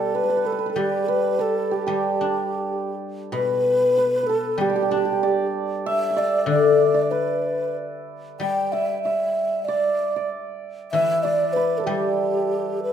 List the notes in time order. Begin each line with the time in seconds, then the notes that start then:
Already playing: B2 G3 G4 A4 B4 D5
0.15 B4
0.24 B4
0.29 B4
0.37 B4
0.45 A4 B4
0.52 B4
0.59 B4
0.66 A4 B4
0.72 G3 A4
0.76 G4
1.08 B4
1.39 A4
1.71 G4
1.87 G3 G4
2.21 D4
3.32 B2 B4
3.98 B4
4.23 A4 B4
4.29 A4
4.58 G3 G4
4.70 G4
4.76 G4
4.83 G4
4.90 D4 G4
4.97 G4
5.05 G4
5.12 G4
5.23 D5
5.86 E5
6.11 E5
6.16 D5
6.46 D3 D5
6.94 D5
7.11 B4
8.40 G3 G5
8.72 E5
9.03 E5
9.65 D5
10.16 D5
10.92 E3 E5
11.23 D5
11.53 B4
11.78 A4
11.84 G3 G4
12.83 B4